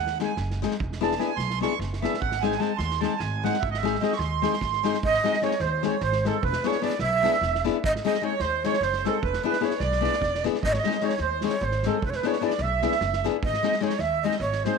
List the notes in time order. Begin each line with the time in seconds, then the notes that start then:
Already playing: D#2 F#5
0.07 snare
0.19 G#3 C4 D#4 G#4, snare
0.24 G#5
0.37 F#1, snare
0.51 snare
0.62 G#3 C4 D#4 G#4, snare
0.71 snare
0.80 E1, kick
0.92 snare
1.01 B3 D4 E4 G#4 A5, snare
1.12 snare
1.19 B3 D4 E4 G#4 G#5, snare
1.36 B1 C6, snare
1.50 snare
1.61 B3 D4 E4 G#4 C#6, snare
1.79 F#1, snare
1.93 snare
2.02 B3 D4 E4 G#4 E5, snare
2.14 snare
2.21 G#1 F#5, kick
2.32 snare
2.41 G#3 C4 D#4 G#4 G#5, snare
2.52 snare
2.58 G#3 C4 D#4 G#4 A5, snare
2.77 D#2 C6, snare
2.91 snare
3.00 G#3 C4 D#4 G#4 A5, snare
3.18 G#1 G#5, snare
3.44 G#3 C4 D#4 G#4 F#5, snare
3.54 snare
3.60 G#1 E5, kick
3.71 D#5, snare
3.76 E5
3.83 G#3 C4 D#4 G#4, snare
3.95 snare
4.01 G#3 C4 D#4 G#4 D#5, snare
4.12 C#6, snare
4.17 D#2 C6, snare
4.42 G#3 C4 D#4 G#4, snare
4.53 snare
4.61 G#1, kick, snare
4.73 snare
4.83 G#3 C4 D#4 G#4, snare
4.94 snare
5.03 G#1 D#5, kick
5.14 snare
5.24 G#3 C4 D#4 G#4, snare
5.33 snare
5.42 G#3 C4 D#4 G#4 C#5, snare
5.51 snare
5.60 D#2 C5, snare
5.83 G#3 C4 D#4 G#4 C#5, snare
6.01 G#1 C5, snare
6.12 snare
6.25 G#3 C4 D#4 G#4 A4, snare
6.43 E1 B4, kick
6.53 snare
6.64 B3 D4 E4 G#4 C#5, snare
6.68 C#5
6.72 snare
6.82 B3 D4 E4 G#4 D5, snare
6.90 snare
6.99 B1 E5, snare
7.23 B3 D4 E4 G#4, snare
7.33 snare
7.41 E1, snare
7.55 snare
7.64 B3 D4 E4 G#4, snare
7.84 G#1 D#5, kick
7.96 snare
8.05 G#3 C4 D#4 G#4 D#5, snare
8.14 snare
8.22 G#3 C4 D#4 G#4 C#5
8.40 D#2 C5, snare
8.64 G#3 C4 D#4 G#4 C#5, snare
8.74 snare
8.81 F#1 C5, snare
8.93 snare
9.05 G#3 C4 D#4 G#4 A4, snare
9.09 A4
9.23 E1 B4, kick
9.33 snare
9.43 B3 D4 E4 G#4 B4
9.49 B4
9.53 snare
9.61 B3 D4 E4 G#4 C#5, snare
9.65 C#5
9.70 snare
9.79 B1 D5, snare
9.83 D5
9.92 snare
10.01 B3 D4 E4 G#4, snare
10.13 snare
10.21 E1, kick, snare
10.35 snare
10.44 B3 D4 E4 G#4, snare
10.55 snare
10.63 G#1 D#5, kick
10.68 C#5
10.73 C#5, snare
10.78 D#5
10.84 G#3 C4 D#4 G#4, snare
10.92 snare
11.01 G#3 C4 D#4 G#4 C#5, snare
11.06 C#5
11.10 snare
11.18 D#2 C5, snare
11.41 G#3 C4 D#4 G#4 C#5, snare
11.46 C#5, snare
11.59 G#1 C5, snare
11.65 C5
11.71 snare
11.83 G#3 C4 A4, snare
11.87 D#4 G#4 A4
12.02 E1 B4, kick
12.10 C#5, snare
12.16 B4
12.23 B3 D4 E4 G#4 C#5, snare
12.28 C#5
12.33 snare
12.41 B3 D4 E4 G#4 D5, snare
12.46 D5
12.50 snare
12.58 B1 E5, snare
12.63 E5
12.82 B3 D4 E4 G#4, snare
12.92 snare
13.01 F#1, snare
13.13 snare
13.24 B3 D4 E4 G#4, snare
13.43 G#1 D#5, kick
13.54 snare
13.63 G#3 C4 D#4 G#4, snare
13.72 snare
13.81 G#3 C4 D#4 G#4 C#5, snare
13.85 C#5
13.90 snare
13.99 D#2 E5, snare
14.23 G#3 C4 D#4 G#4 D#5
14.28 D#5, snare
14.40 G#1 C#5, snare
14.53 snare
14.65 G#3 C4 D#4 G#4 C5, snare